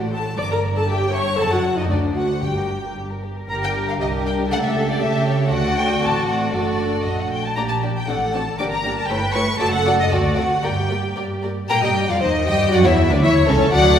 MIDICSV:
0, 0, Header, 1, 6, 480
1, 0, Start_track
1, 0, Tempo, 508044
1, 357, Time_signature, 2, 2, 24, 8
1, 1796, Tempo, 531444
1, 3236, Tempo, 508906
1, 9476, Tempo, 526778
1, 11396, Tempo, 509338
1, 13067, End_track
2, 0, Start_track
2, 0, Title_t, "Violin section"
2, 0, Program_c, 0, 48
2, 0, Note_on_c, 0, 74, 47
2, 108, Note_on_c, 0, 72, 45
2, 116, Note_off_c, 0, 74, 0
2, 229, Note_on_c, 0, 74, 44
2, 233, Note_off_c, 0, 72, 0
2, 353, Note_off_c, 0, 74, 0
2, 356, Note_on_c, 0, 70, 60
2, 467, Note_off_c, 0, 70, 0
2, 467, Note_on_c, 0, 74, 54
2, 590, Note_off_c, 0, 74, 0
2, 597, Note_on_c, 0, 70, 56
2, 712, Note_on_c, 0, 74, 55
2, 714, Note_off_c, 0, 70, 0
2, 829, Note_on_c, 0, 76, 52
2, 831, Note_off_c, 0, 74, 0
2, 940, Note_off_c, 0, 76, 0
2, 950, Note_on_c, 0, 73, 61
2, 1064, Note_on_c, 0, 76, 55
2, 1069, Note_off_c, 0, 73, 0
2, 1186, Note_off_c, 0, 76, 0
2, 1197, Note_on_c, 0, 73, 56
2, 1302, Note_on_c, 0, 78, 66
2, 1313, Note_off_c, 0, 73, 0
2, 1417, Note_off_c, 0, 78, 0
2, 1434, Note_on_c, 0, 74, 58
2, 1553, Note_off_c, 0, 74, 0
2, 1559, Note_on_c, 0, 78, 54
2, 1676, Note_off_c, 0, 78, 0
2, 1676, Note_on_c, 0, 74, 57
2, 1793, Note_off_c, 0, 74, 0
2, 1804, Note_on_c, 0, 74, 49
2, 1911, Note_off_c, 0, 74, 0
2, 1927, Note_on_c, 0, 72, 52
2, 2041, Note_off_c, 0, 72, 0
2, 2044, Note_on_c, 0, 74, 46
2, 2158, Note_on_c, 0, 72, 40
2, 2161, Note_off_c, 0, 74, 0
2, 2276, Note_on_c, 0, 67, 44
2, 2279, Note_off_c, 0, 72, 0
2, 2390, Note_off_c, 0, 67, 0
2, 2406, Note_on_c, 0, 70, 39
2, 2524, Note_off_c, 0, 70, 0
2, 2524, Note_on_c, 0, 67, 39
2, 2642, Note_off_c, 0, 67, 0
2, 2645, Note_on_c, 0, 70, 37
2, 2762, Note_off_c, 0, 70, 0
2, 2767, Note_on_c, 0, 67, 37
2, 2874, Note_off_c, 0, 67, 0
2, 2877, Note_on_c, 0, 70, 40
2, 2998, Note_off_c, 0, 70, 0
2, 3000, Note_on_c, 0, 67, 36
2, 3119, Note_off_c, 0, 67, 0
2, 3126, Note_on_c, 0, 70, 37
2, 3236, Note_on_c, 0, 82, 101
2, 3240, Note_off_c, 0, 70, 0
2, 3285, Note_off_c, 0, 82, 0
2, 3366, Note_on_c, 0, 79, 80
2, 3441, Note_off_c, 0, 79, 0
2, 3610, Note_on_c, 0, 77, 83
2, 3656, Note_off_c, 0, 77, 0
2, 3722, Note_on_c, 0, 75, 73
2, 3798, Note_off_c, 0, 75, 0
2, 3964, Note_on_c, 0, 79, 81
2, 4040, Note_off_c, 0, 79, 0
2, 4205, Note_on_c, 0, 78, 112
2, 4250, Note_off_c, 0, 78, 0
2, 4310, Note_on_c, 0, 76, 85
2, 4543, Note_off_c, 0, 76, 0
2, 4556, Note_on_c, 0, 74, 93
2, 4669, Note_on_c, 0, 76, 96
2, 4671, Note_off_c, 0, 74, 0
2, 4902, Note_on_c, 0, 73, 88
2, 4905, Note_off_c, 0, 76, 0
2, 5136, Note_on_c, 0, 78, 105
2, 5142, Note_off_c, 0, 73, 0
2, 5379, Note_off_c, 0, 78, 0
2, 5380, Note_on_c, 0, 79, 94
2, 5618, Note_on_c, 0, 81, 89
2, 5620, Note_off_c, 0, 79, 0
2, 5859, Note_off_c, 0, 81, 0
2, 5860, Note_on_c, 0, 78, 71
2, 6097, Note_off_c, 0, 78, 0
2, 6102, Note_on_c, 0, 74, 81
2, 6586, Note_on_c, 0, 75, 74
2, 6590, Note_off_c, 0, 74, 0
2, 6711, Note_off_c, 0, 75, 0
2, 6733, Note_on_c, 0, 78, 73
2, 6845, Note_on_c, 0, 79, 75
2, 6847, Note_off_c, 0, 78, 0
2, 6962, Note_off_c, 0, 79, 0
2, 6971, Note_on_c, 0, 81, 75
2, 7076, Note_on_c, 0, 82, 85
2, 7089, Note_off_c, 0, 81, 0
2, 7126, Note_off_c, 0, 82, 0
2, 7194, Note_on_c, 0, 81, 79
2, 7269, Note_off_c, 0, 81, 0
2, 7451, Note_on_c, 0, 79, 78
2, 7569, Note_off_c, 0, 79, 0
2, 7571, Note_on_c, 0, 78, 80
2, 7808, Note_on_c, 0, 81, 71
2, 7809, Note_off_c, 0, 78, 0
2, 8037, Note_on_c, 0, 86, 86
2, 8043, Note_off_c, 0, 81, 0
2, 8085, Note_off_c, 0, 86, 0
2, 8159, Note_on_c, 0, 82, 89
2, 8391, Note_off_c, 0, 82, 0
2, 8395, Note_on_c, 0, 81, 86
2, 8501, Note_on_c, 0, 79, 93
2, 8512, Note_off_c, 0, 81, 0
2, 8746, Note_off_c, 0, 79, 0
2, 8755, Note_on_c, 0, 85, 99
2, 8990, Note_on_c, 0, 81, 118
2, 8993, Note_off_c, 0, 85, 0
2, 9109, Note_off_c, 0, 81, 0
2, 9117, Note_on_c, 0, 78, 112
2, 9351, Note_off_c, 0, 78, 0
2, 9375, Note_on_c, 0, 75, 97
2, 9484, Note_off_c, 0, 75, 0
2, 9491, Note_on_c, 0, 74, 89
2, 9721, Note_off_c, 0, 74, 0
2, 9727, Note_on_c, 0, 78, 91
2, 9962, Note_off_c, 0, 78, 0
2, 9967, Note_on_c, 0, 79, 89
2, 10446, Note_off_c, 0, 79, 0
2, 10921, Note_on_c, 0, 82, 99
2, 10969, Note_off_c, 0, 82, 0
2, 11037, Note_on_c, 0, 79, 93
2, 11272, Note_off_c, 0, 79, 0
2, 11298, Note_on_c, 0, 77, 96
2, 11405, Note_on_c, 0, 75, 95
2, 11407, Note_off_c, 0, 77, 0
2, 11636, Note_on_c, 0, 79, 101
2, 11638, Note_off_c, 0, 75, 0
2, 11878, Note_off_c, 0, 79, 0
2, 11879, Note_on_c, 0, 78, 106
2, 11996, Note_on_c, 0, 76, 100
2, 12000, Note_off_c, 0, 78, 0
2, 12239, Note_off_c, 0, 76, 0
2, 12244, Note_on_c, 0, 74, 100
2, 12354, Note_on_c, 0, 76, 111
2, 12363, Note_off_c, 0, 74, 0
2, 12429, Note_off_c, 0, 76, 0
2, 12582, Note_on_c, 0, 73, 104
2, 12824, Note_off_c, 0, 73, 0
2, 12830, Note_on_c, 0, 78, 126
2, 13067, Note_off_c, 0, 78, 0
2, 13067, End_track
3, 0, Start_track
3, 0, Title_t, "Violin section"
3, 0, Program_c, 1, 48
3, 118, Note_on_c, 1, 81, 77
3, 353, Note_off_c, 1, 81, 0
3, 364, Note_on_c, 1, 86, 85
3, 477, Note_off_c, 1, 86, 0
3, 487, Note_on_c, 1, 82, 74
3, 563, Note_off_c, 1, 82, 0
3, 725, Note_on_c, 1, 81, 73
3, 835, Note_off_c, 1, 81, 0
3, 845, Note_on_c, 1, 79, 82
3, 1076, Note_off_c, 1, 79, 0
3, 1079, Note_on_c, 1, 85, 96
3, 1314, Note_off_c, 1, 85, 0
3, 1324, Note_on_c, 1, 81, 89
3, 1437, Note_off_c, 1, 81, 0
3, 1439, Note_on_c, 1, 78, 79
3, 1677, Note_off_c, 1, 78, 0
3, 1684, Note_on_c, 1, 75, 67
3, 1731, Note_off_c, 1, 75, 0
3, 1804, Note_on_c, 1, 74, 61
3, 1876, Note_off_c, 1, 74, 0
3, 2039, Note_on_c, 1, 78, 74
3, 2276, Note_off_c, 1, 78, 0
3, 2286, Note_on_c, 1, 79, 60
3, 2764, Note_off_c, 1, 79, 0
3, 3247, Note_on_c, 1, 67, 64
3, 3247, Note_on_c, 1, 70, 60
3, 3691, Note_off_c, 1, 67, 0
3, 3691, Note_off_c, 1, 70, 0
3, 3727, Note_on_c, 1, 70, 67
3, 3728, Note_on_c, 1, 67, 68
3, 4194, Note_on_c, 1, 69, 66
3, 4198, Note_off_c, 1, 70, 0
3, 4658, Note_off_c, 1, 69, 0
3, 4669, Note_on_c, 1, 69, 75
3, 5120, Note_off_c, 1, 67, 0
3, 5134, Note_off_c, 1, 69, 0
3, 5147, Note_on_c, 1, 74, 74
3, 5149, Note_on_c, 1, 66, 78
3, 6085, Note_off_c, 1, 74, 0
3, 6093, Note_off_c, 1, 66, 0
3, 6098, Note_on_c, 1, 69, 65
3, 6104, Note_on_c, 1, 66, 65
3, 6876, Note_off_c, 1, 66, 0
3, 6889, Note_off_c, 1, 69, 0
3, 7078, Note_on_c, 1, 67, 61
3, 7080, Note_on_c, 1, 74, 61
3, 7154, Note_off_c, 1, 67, 0
3, 7155, Note_off_c, 1, 74, 0
3, 7325, Note_on_c, 1, 74, 51
3, 7327, Note_on_c, 1, 67, 50
3, 7401, Note_off_c, 1, 74, 0
3, 7402, Note_off_c, 1, 67, 0
3, 7566, Note_on_c, 1, 66, 58
3, 7568, Note_on_c, 1, 74, 56
3, 7642, Note_off_c, 1, 66, 0
3, 7643, Note_off_c, 1, 74, 0
3, 7810, Note_on_c, 1, 74, 56
3, 7811, Note_on_c, 1, 66, 58
3, 7886, Note_off_c, 1, 74, 0
3, 7887, Note_off_c, 1, 66, 0
3, 8046, Note_on_c, 1, 67, 70
3, 8049, Note_on_c, 1, 74, 68
3, 8121, Note_off_c, 1, 67, 0
3, 8124, Note_off_c, 1, 74, 0
3, 8292, Note_on_c, 1, 67, 54
3, 8292, Note_on_c, 1, 74, 59
3, 8367, Note_off_c, 1, 67, 0
3, 8368, Note_off_c, 1, 74, 0
3, 8521, Note_on_c, 1, 69, 66
3, 8523, Note_on_c, 1, 73, 61
3, 8596, Note_off_c, 1, 69, 0
3, 8598, Note_off_c, 1, 73, 0
3, 8757, Note_on_c, 1, 73, 72
3, 8758, Note_on_c, 1, 69, 67
3, 8833, Note_off_c, 1, 73, 0
3, 8834, Note_off_c, 1, 69, 0
3, 8992, Note_on_c, 1, 74, 85
3, 8994, Note_on_c, 1, 69, 82
3, 9068, Note_off_c, 1, 74, 0
3, 9069, Note_off_c, 1, 69, 0
3, 9242, Note_on_c, 1, 69, 74
3, 9244, Note_on_c, 1, 74, 72
3, 9318, Note_off_c, 1, 69, 0
3, 9319, Note_off_c, 1, 74, 0
3, 9476, Note_on_c, 1, 69, 76
3, 9479, Note_on_c, 1, 74, 73
3, 9549, Note_off_c, 1, 69, 0
3, 9552, Note_off_c, 1, 74, 0
3, 9702, Note_on_c, 1, 69, 68
3, 9702, Note_on_c, 1, 74, 73
3, 9775, Note_off_c, 1, 69, 0
3, 9775, Note_off_c, 1, 74, 0
3, 9948, Note_on_c, 1, 74, 67
3, 9949, Note_on_c, 1, 70, 72
3, 10020, Note_off_c, 1, 74, 0
3, 10021, Note_off_c, 1, 70, 0
3, 10191, Note_on_c, 1, 70, 52
3, 10191, Note_on_c, 1, 74, 51
3, 10263, Note_off_c, 1, 70, 0
3, 10264, Note_off_c, 1, 74, 0
3, 10429, Note_on_c, 1, 70, 54
3, 10434, Note_on_c, 1, 74, 58
3, 10502, Note_off_c, 1, 70, 0
3, 10507, Note_off_c, 1, 74, 0
3, 10670, Note_on_c, 1, 74, 52
3, 10676, Note_on_c, 1, 70, 47
3, 10743, Note_off_c, 1, 74, 0
3, 10749, Note_off_c, 1, 70, 0
3, 10917, Note_on_c, 1, 79, 101
3, 11030, Note_off_c, 1, 79, 0
3, 11036, Note_on_c, 1, 75, 84
3, 11270, Note_on_c, 1, 74, 80
3, 11276, Note_off_c, 1, 75, 0
3, 11388, Note_on_c, 1, 72, 91
3, 11390, Note_off_c, 1, 74, 0
3, 11463, Note_off_c, 1, 72, 0
3, 11630, Note_on_c, 1, 75, 100
3, 11870, Note_off_c, 1, 75, 0
3, 11871, Note_on_c, 1, 74, 107
3, 11921, Note_off_c, 1, 74, 0
3, 11988, Note_on_c, 1, 73, 96
3, 12063, Note_off_c, 1, 73, 0
3, 12230, Note_on_c, 1, 71, 86
3, 12280, Note_off_c, 1, 71, 0
3, 12345, Note_on_c, 1, 73, 108
3, 12587, Note_off_c, 1, 73, 0
3, 12591, Note_on_c, 1, 69, 111
3, 12830, Note_on_c, 1, 74, 111
3, 12834, Note_off_c, 1, 69, 0
3, 13067, Note_off_c, 1, 74, 0
3, 13067, End_track
4, 0, Start_track
4, 0, Title_t, "Viola section"
4, 0, Program_c, 2, 48
4, 0, Note_on_c, 2, 66, 65
4, 115, Note_off_c, 2, 66, 0
4, 120, Note_on_c, 2, 69, 83
4, 196, Note_off_c, 2, 69, 0
4, 359, Note_on_c, 2, 74, 94
4, 406, Note_off_c, 2, 74, 0
4, 488, Note_on_c, 2, 70, 83
4, 563, Note_off_c, 2, 70, 0
4, 729, Note_on_c, 2, 69, 91
4, 773, Note_off_c, 2, 69, 0
4, 838, Note_on_c, 2, 67, 88
4, 1067, Note_off_c, 2, 67, 0
4, 1070, Note_on_c, 2, 73, 97
4, 1304, Note_off_c, 2, 73, 0
4, 1314, Note_on_c, 2, 69, 108
4, 1429, Note_on_c, 2, 66, 91
4, 1432, Note_off_c, 2, 69, 0
4, 1672, Note_off_c, 2, 66, 0
4, 1685, Note_on_c, 2, 63, 82
4, 1799, Note_on_c, 2, 62, 71
4, 1801, Note_off_c, 2, 63, 0
4, 2036, Note_on_c, 2, 66, 74
4, 2037, Note_off_c, 2, 62, 0
4, 2274, Note_off_c, 2, 66, 0
4, 2284, Note_on_c, 2, 67, 62
4, 2753, Note_off_c, 2, 67, 0
4, 3239, Note_on_c, 2, 62, 69
4, 3240, Note_on_c, 2, 55, 55
4, 3687, Note_off_c, 2, 55, 0
4, 3715, Note_on_c, 2, 55, 65
4, 4183, Note_off_c, 2, 55, 0
4, 4192, Note_on_c, 2, 57, 72
4, 5107, Note_off_c, 2, 62, 0
4, 5131, Note_off_c, 2, 57, 0
4, 5143, Note_on_c, 2, 57, 77
4, 5144, Note_on_c, 2, 62, 68
4, 5612, Note_off_c, 2, 62, 0
4, 5618, Note_on_c, 2, 60, 61
4, 6083, Note_off_c, 2, 57, 0
4, 6091, Note_off_c, 2, 60, 0
4, 6100, Note_on_c, 2, 57, 61
4, 6101, Note_on_c, 2, 62, 58
4, 6874, Note_off_c, 2, 57, 0
4, 6890, Note_off_c, 2, 62, 0
4, 7081, Note_on_c, 2, 62, 53
4, 7082, Note_on_c, 2, 58, 62
4, 7157, Note_off_c, 2, 58, 0
4, 7157, Note_off_c, 2, 62, 0
4, 7321, Note_on_c, 2, 58, 53
4, 7323, Note_on_c, 2, 62, 52
4, 7396, Note_off_c, 2, 58, 0
4, 7398, Note_off_c, 2, 62, 0
4, 7557, Note_on_c, 2, 62, 51
4, 7559, Note_on_c, 2, 60, 52
4, 7633, Note_off_c, 2, 62, 0
4, 7635, Note_off_c, 2, 60, 0
4, 7804, Note_on_c, 2, 60, 57
4, 7804, Note_on_c, 2, 62, 55
4, 7879, Note_off_c, 2, 60, 0
4, 7879, Note_off_c, 2, 62, 0
4, 8039, Note_on_c, 2, 58, 60
4, 8039, Note_on_c, 2, 62, 64
4, 8115, Note_off_c, 2, 58, 0
4, 8115, Note_off_c, 2, 62, 0
4, 8274, Note_on_c, 2, 58, 63
4, 8275, Note_on_c, 2, 62, 60
4, 8350, Note_off_c, 2, 58, 0
4, 8350, Note_off_c, 2, 62, 0
4, 8519, Note_on_c, 2, 57, 61
4, 8520, Note_on_c, 2, 64, 59
4, 8595, Note_off_c, 2, 57, 0
4, 8595, Note_off_c, 2, 64, 0
4, 8755, Note_on_c, 2, 64, 68
4, 8757, Note_on_c, 2, 57, 73
4, 8831, Note_off_c, 2, 64, 0
4, 8832, Note_off_c, 2, 57, 0
4, 8991, Note_on_c, 2, 57, 82
4, 8992, Note_on_c, 2, 66, 75
4, 9067, Note_off_c, 2, 57, 0
4, 9067, Note_off_c, 2, 66, 0
4, 9233, Note_on_c, 2, 66, 79
4, 9234, Note_on_c, 2, 57, 73
4, 9309, Note_off_c, 2, 57, 0
4, 9309, Note_off_c, 2, 66, 0
4, 9474, Note_on_c, 2, 60, 65
4, 9479, Note_on_c, 2, 66, 67
4, 9547, Note_off_c, 2, 60, 0
4, 9551, Note_off_c, 2, 66, 0
4, 9717, Note_on_c, 2, 66, 71
4, 9718, Note_on_c, 2, 60, 66
4, 9790, Note_off_c, 2, 66, 0
4, 9791, Note_off_c, 2, 60, 0
4, 9957, Note_on_c, 2, 58, 66
4, 9958, Note_on_c, 2, 67, 65
4, 10030, Note_off_c, 2, 58, 0
4, 10031, Note_off_c, 2, 67, 0
4, 10197, Note_on_c, 2, 67, 56
4, 10198, Note_on_c, 2, 58, 56
4, 10270, Note_off_c, 2, 58, 0
4, 10270, Note_off_c, 2, 67, 0
4, 10436, Note_on_c, 2, 67, 54
4, 10437, Note_on_c, 2, 58, 50
4, 10509, Note_off_c, 2, 67, 0
4, 10510, Note_off_c, 2, 58, 0
4, 10678, Note_on_c, 2, 58, 50
4, 10679, Note_on_c, 2, 67, 54
4, 10751, Note_off_c, 2, 58, 0
4, 10752, Note_off_c, 2, 67, 0
4, 10920, Note_on_c, 2, 70, 97
4, 10969, Note_off_c, 2, 70, 0
4, 11045, Note_on_c, 2, 67, 84
4, 11276, Note_off_c, 2, 67, 0
4, 11283, Note_on_c, 2, 65, 87
4, 11330, Note_off_c, 2, 65, 0
4, 11394, Note_on_c, 2, 63, 80
4, 11632, Note_off_c, 2, 63, 0
4, 11636, Note_on_c, 2, 67, 99
4, 11871, Note_on_c, 2, 66, 112
4, 11873, Note_off_c, 2, 67, 0
4, 11996, Note_off_c, 2, 66, 0
4, 12002, Note_on_c, 2, 64, 100
4, 12238, Note_on_c, 2, 62, 99
4, 12242, Note_off_c, 2, 64, 0
4, 12357, Note_off_c, 2, 62, 0
4, 12357, Note_on_c, 2, 64, 101
4, 12595, Note_on_c, 2, 61, 110
4, 12598, Note_off_c, 2, 64, 0
4, 12829, Note_on_c, 2, 66, 90
4, 12832, Note_on_c, 2, 57, 96
4, 12836, Note_off_c, 2, 61, 0
4, 13067, Note_off_c, 2, 57, 0
4, 13067, Note_off_c, 2, 66, 0
4, 13067, End_track
5, 0, Start_track
5, 0, Title_t, "Cello section"
5, 0, Program_c, 3, 48
5, 0, Note_on_c, 3, 45, 58
5, 357, Note_on_c, 3, 43, 65
5, 358, Note_off_c, 3, 45, 0
5, 1290, Note_off_c, 3, 43, 0
5, 1314, Note_on_c, 3, 42, 73
5, 1798, Note_off_c, 3, 42, 0
5, 1800, Note_on_c, 3, 38, 67
5, 2271, Note_off_c, 3, 38, 0
5, 2281, Note_on_c, 3, 43, 53
5, 3053, Note_off_c, 3, 43, 0
5, 3236, Note_on_c, 3, 70, 71
5, 3685, Note_off_c, 3, 70, 0
5, 3720, Note_on_c, 3, 67, 63
5, 4195, Note_off_c, 3, 67, 0
5, 4195, Note_on_c, 3, 69, 76
5, 4659, Note_off_c, 3, 69, 0
5, 4668, Note_on_c, 3, 67, 78
5, 5138, Note_on_c, 3, 66, 84
5, 5143, Note_off_c, 3, 67, 0
5, 6081, Note_off_c, 3, 66, 0
5, 6106, Note_on_c, 3, 66, 60
5, 6824, Note_off_c, 3, 66, 0
5, 7085, Note_on_c, 3, 67, 58
5, 7538, Note_off_c, 3, 67, 0
5, 7571, Note_on_c, 3, 69, 61
5, 8034, Note_off_c, 3, 69, 0
5, 8040, Note_on_c, 3, 70, 71
5, 8504, Note_off_c, 3, 70, 0
5, 8508, Note_on_c, 3, 71, 84
5, 8987, Note_on_c, 3, 69, 88
5, 8989, Note_off_c, 3, 71, 0
5, 9463, Note_off_c, 3, 69, 0
5, 9473, Note_on_c, 3, 66, 84
5, 9944, Note_off_c, 3, 66, 0
5, 9951, Note_on_c, 3, 67, 61
5, 10667, Note_off_c, 3, 67, 0
5, 10917, Note_on_c, 3, 58, 90
5, 11031, Note_off_c, 3, 58, 0
5, 11042, Note_on_c, 3, 55, 81
5, 11274, Note_off_c, 3, 55, 0
5, 11278, Note_on_c, 3, 53, 82
5, 11326, Note_off_c, 3, 53, 0
5, 11400, Note_on_c, 3, 51, 85
5, 11635, Note_off_c, 3, 51, 0
5, 11639, Note_on_c, 3, 55, 97
5, 11880, Note_off_c, 3, 55, 0
5, 11880, Note_on_c, 3, 54, 103
5, 12000, Note_off_c, 3, 54, 0
5, 12003, Note_on_c, 3, 52, 91
5, 12078, Note_off_c, 3, 52, 0
5, 12242, Note_on_c, 3, 50, 83
5, 12290, Note_off_c, 3, 50, 0
5, 12362, Note_on_c, 3, 52, 97
5, 12437, Note_off_c, 3, 52, 0
5, 12596, Note_on_c, 3, 49, 101
5, 12671, Note_off_c, 3, 49, 0
5, 12832, Note_on_c, 3, 54, 109
5, 13067, Note_off_c, 3, 54, 0
5, 13067, End_track
6, 0, Start_track
6, 0, Title_t, "Double bass section"
6, 0, Program_c, 4, 48
6, 0, Note_on_c, 4, 33, 56
6, 353, Note_on_c, 4, 31, 70
6, 358, Note_off_c, 4, 33, 0
6, 1288, Note_off_c, 4, 31, 0
6, 1309, Note_on_c, 4, 30, 76
6, 1796, Note_off_c, 4, 30, 0
6, 1798, Note_on_c, 4, 38, 64
6, 2270, Note_off_c, 4, 38, 0
6, 2276, Note_on_c, 4, 31, 55
6, 3050, Note_off_c, 4, 31, 0
6, 3229, Note_on_c, 4, 31, 76
6, 3681, Note_off_c, 4, 31, 0
6, 3716, Note_on_c, 4, 36, 72
6, 4183, Note_off_c, 4, 36, 0
6, 4196, Note_on_c, 4, 37, 84
6, 4665, Note_on_c, 4, 49, 79
6, 4668, Note_off_c, 4, 37, 0
6, 5136, Note_on_c, 4, 38, 89
6, 5142, Note_off_c, 4, 49, 0
6, 5617, Note_off_c, 4, 38, 0
6, 5618, Note_on_c, 4, 33, 69
6, 6091, Note_off_c, 4, 33, 0
6, 6096, Note_on_c, 4, 30, 71
6, 6587, Note_off_c, 4, 30, 0
6, 6588, Note_on_c, 4, 34, 62
6, 7069, Note_off_c, 4, 34, 0
6, 7080, Note_on_c, 4, 34, 74
6, 7512, Note_off_c, 4, 34, 0
6, 7566, Note_on_c, 4, 33, 63
6, 7986, Note_off_c, 4, 33, 0
6, 8039, Note_on_c, 4, 31, 76
6, 8457, Note_off_c, 4, 31, 0
6, 8512, Note_on_c, 4, 31, 70
6, 8935, Note_off_c, 4, 31, 0
6, 8992, Note_on_c, 4, 30, 94
6, 9418, Note_off_c, 4, 30, 0
6, 9472, Note_on_c, 4, 38, 87
6, 9896, Note_off_c, 4, 38, 0
6, 9952, Note_on_c, 4, 43, 74
6, 10381, Note_off_c, 4, 43, 0
6, 10434, Note_on_c, 4, 43, 70
6, 10864, Note_off_c, 4, 43, 0
6, 10916, Note_on_c, 4, 46, 104
6, 11030, Note_off_c, 4, 46, 0
6, 11034, Note_on_c, 4, 43, 95
6, 11271, Note_on_c, 4, 41, 84
6, 11275, Note_off_c, 4, 43, 0
6, 11389, Note_on_c, 4, 39, 86
6, 11393, Note_off_c, 4, 41, 0
6, 11634, Note_off_c, 4, 39, 0
6, 11637, Note_on_c, 4, 43, 95
6, 11873, Note_on_c, 4, 42, 121
6, 11879, Note_off_c, 4, 43, 0
6, 11994, Note_off_c, 4, 42, 0
6, 11994, Note_on_c, 4, 40, 109
6, 12230, Note_on_c, 4, 38, 98
6, 12238, Note_off_c, 4, 40, 0
6, 12355, Note_on_c, 4, 40, 93
6, 12356, Note_off_c, 4, 38, 0
6, 12587, Note_on_c, 4, 37, 106
6, 12598, Note_off_c, 4, 40, 0
6, 12827, Note_off_c, 4, 37, 0
6, 12832, Note_on_c, 4, 38, 104
6, 13067, Note_off_c, 4, 38, 0
6, 13067, End_track
0, 0, End_of_file